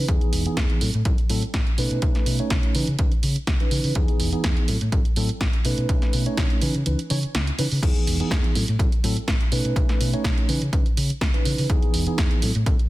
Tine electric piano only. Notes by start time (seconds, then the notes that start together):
0.09 E3 B3 D#4 G#4
0.46 E3 B3 D#4 G#4
0.81 F#3 C4 E4 A4
1.05 F#3 C4 E4 A4
1.29 F#3 C4 E4 A4
1.78 A3 C#4 D#4 B4
2.02 A3 C#4 D#4 B4
2.39 A3 C#4 D#4 C#5
2.75 E3 C#4 D#4 B4
2.99 E3 C#4 D#4 B4
3.60 E3 C#4 D#4 B4
3.95 E3 B3 D#4 G#4
4.32 E3 B3 D#4 G#4
4.68 F#3 C4 E4 A4
4.92 F#3 C4 E4 A4
5.16 F#3 C4 E4 A4
5.65 A3 C#4 D#4 B4
5.89 A3 C#4 D#4
6.26 A3 C#4 D#4 C#5
6.62 E3 C#4 D#4 B4
6.86 E3 C#4 D#4 B4
7.10 E3 C#4 D#4 C#5
7.58 E3 C#4 D#4 B4
7.83 E3 B3 D#4 G#4
8.20 E3 B3 D#4 G#4
8.55 F#3 C4 E4 A4
8.80 F#3 C4 E4 A4
9.04 F#3 C4 E4 A4
9.52 A3 C#4 D#4 B4
10.13 A3 C#4 D#4 C#5
10.48 E3 C#4 D#4 B4
10.73 E3 C#4 D#4 B4
11.33 E3 C#4 D#4 B4
11.69 E3 B3 D#4 G#4
12.07 E3 B3 D#4 G#4
12.42 F#3 C4 E4 A4
12.66 F#3 C4 E4 A4